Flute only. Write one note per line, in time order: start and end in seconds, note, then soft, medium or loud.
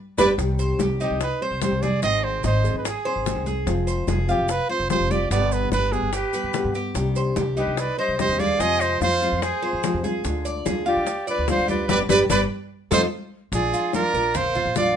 0.18 0.31 D5 medium
6.13 6.75 B4 medium
7.58 7.81 B4 medium
7.79 7.98 D5 medium
7.99 8.18 D#5 medium
8.19 8.40 D#5 medium
8.39 8.61 F5 medium
8.59 8.82 G#5 loud
8.80 9.00 D#5 medium
9.01 9.44 F5 medium
9.43 10.04 C5 medium
10.87 11.25 D5 medium
11.28 11.47 D5 medium
11.48 11.67 F5 medium
11.69 11.88 D5 medium
11.89 12.02 D5 medium
12.10 12.23 D5 medium
12.29 12.43 D5 medium
12.91 13.04 F5 medium
13.53 13.91 D5 medium
13.95 14.37 D5 medium
14.35 14.76 F5 medium
14.77 14.95 F5 medium